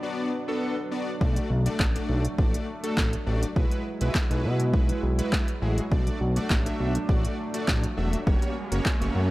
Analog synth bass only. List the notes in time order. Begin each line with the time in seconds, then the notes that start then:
1.21 B1
1.50 B1
1.80 A1
2.09 B1
2.38 A1
2.97 A1
3.27 A1
3.56 B1
4.01 B1
4.31 B1
4.44 B2
4.74 B1
5.03 B1
5.62 A1
5.92 B1
6.21 B1
6.50 A1
6.80 B1
7.09 A1
7.68 A1
7.98 E1
8.27 F#1
8.72 F#1
9.01 F#1
9.15 F#2